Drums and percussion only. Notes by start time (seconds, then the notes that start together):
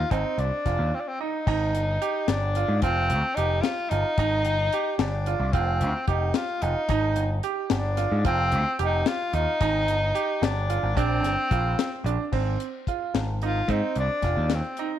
0.11 kick, closed hi-hat
0.39 closed hi-hat
0.66 kick, snare, closed hi-hat
1.47 kick, crash
1.75 closed hi-hat
2.02 closed hi-hat
2.28 snare, closed hi-hat
2.55 closed hi-hat
2.82 kick, closed hi-hat
3.10 closed hi-hat
3.37 closed hi-hat
3.64 snare, closed hi-hat
3.91 closed hi-hat
4.18 kick, closed hi-hat
4.45 closed hi-hat
4.73 closed hi-hat
4.99 snare, closed hi-hat
5.26 closed hi-hat
5.53 kick, closed hi-hat
5.81 closed hi-hat
6.08 kick, closed hi-hat
6.34 snare, closed hi-hat
6.62 closed hi-hat
6.89 kick, closed hi-hat
7.16 closed hi-hat
7.43 closed hi-hat
7.70 snare, closed hi-hat
7.97 snare, closed hi-hat
8.25 kick, closed hi-hat
8.52 closed hi-hat
8.79 closed hi-hat
9.06 snare, closed hi-hat
9.33 closed hi-hat
9.61 kick, closed hi-hat
9.88 closed hi-hat
10.15 closed hi-hat
10.43 snare, closed hi-hat
10.70 closed hi-hat
10.97 kick, closed hi-hat
11.24 snare, closed hi-hat
11.51 kick, closed hi-hat
11.79 snare, closed hi-hat
12.06 closed hi-hat
12.33 kick, crash
12.60 closed hi-hat
12.87 kick, closed hi-hat
13.15 snare, closed hi-hat
13.42 closed hi-hat
13.69 kick, closed hi-hat
13.96 closed hi-hat
14.22 kick, snare, closed hi-hat
14.50 snare, closed hi-hat
14.77 closed hi-hat